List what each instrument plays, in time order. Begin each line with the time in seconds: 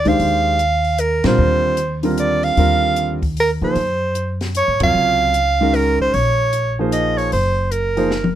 Already playing: upright bass D#2
0.05 grand piano D#3 G#3 D4 G4 C5, soprano saxophone F5, kick, open hi-hat
0.20 upright bass D#2, open hi-hat
0.59 closed hi-hat
0.84 open hi-hat
0.98 soprano saxophone A#4, closed hi-hat
1.24 upright bass A#2, grand piano D3 G3 C4 F4 A#4, soprano saxophone C5, snare, ride
1.38 upright bass D#2
1.77 closed hi-hat
2.03 grand piano D3 G3 C4 F4 A#4, open hi-hat
2.18 soprano saxophone D5, closed hi-hat
2.43 soprano saxophone F5, open hi-hat
2.57 upright bass D#2, grand piano D3 G3 C4 F4 A#4, open hi-hat
2.96 closed hi-hat
3.23 kick, open hi-hat
3.37 soprano saxophone A#4, open hi-hat
3.62 upright bass C#3, grand piano F3 A#3 D#4 G#4 C5, soprano saxophone C5
3.75 upright bass F#2, open hi-hat
4.15 closed hi-hat
4.41 snare, open hi-hat
4.55 soprano saxophone C#5, closed hi-hat
4.68 upright bass G#2
4.80 upright bass F2, grand piano C3 F#3 F4 A#4 C#5, soprano saxophone F5, kick, ride
4.94 upright bass C#2
5.34 closed hi-hat
5.60 grand piano D#3 G#3 C#4 F#4 A#4
5.74 soprano saxophone A#4, open hi-hat
6.00 soprano saxophone C5, kick
6.14 upright bass A#1, soprano saxophone C#5, open hi-hat
6.53 closed hi-hat
6.79 grand piano F3 A#3 D#4 G#4 C5
6.92 soprano saxophone D#5, closed hi-hat
7.18 soprano saxophone C#5, open hi-hat
7.32 upright bass F#1, soprano saxophone C5, open hi-hat
7.71 soprano saxophone A#4, closed hi-hat
7.97 grand piano F3 A#3 D#4 G#4 C5, open hi-hat
8.11 snare
8.24 high tom